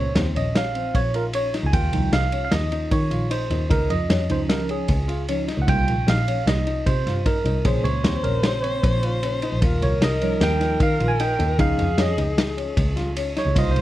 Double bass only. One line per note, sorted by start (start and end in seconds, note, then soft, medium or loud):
0.00 0.12 C#2 medium
0.16 0.31 D#2 medium
0.36 0.82 A#1 medium
0.94 1.49 A#1 medium
1.63 1.71 C#2 medium
1.73 1.89 D#2 loud
1.93 2.01 C2 loud
2.13 2.28 C2 loud
2.52 2.83 D#2 loud
2.91 3.07 D#3 loud
3.11 3.42 A#1 medium
3.50 3.66 D#2 medium
3.70 3.78 C#2 medium
3.89 4.05 F2 medium
4.10 4.25 F2 loud
4.30 4.76 C#2 medium
4.89 5.43 C#2 loud
5.58 5.65 C#2 loud
5.68 5.83 C2 loud
5.87 5.95 A#1 medium
6.07 6.23 A#1 loud
6.46 6.77 C2 medium
6.86 7.02 C3 loud
7.06 7.37 G2 medium
7.45 7.60 C2 medium
7.65 7.73 A#1 loud
7.84 8.00 C#2 loud
8.04 8.20 D#2 medium
8.24 8.70 A#1 medium
8.83 9.37 A#1 loud
9.52 9.60 A#1 medium
9.62 9.77 D#2 loud
9.82 9.90 C2 loud
10.01 10.17 C2 medium
10.41 10.72 D#2 loud
10.80 10.96 D#3 loud
11.00 11.31 A#1 medium
11.39 11.55 D#2 loud
11.59 11.67 C#2 loud
11.79 11.94 F2 loud
11.98 12.14 F2 medium
12.18 12.64 C#2 medium
12.77 13.31 C#2 loud
13.45 13.53 C#2 loud
13.56 13.71 C2 loud
13.76 13.81 A#1 medium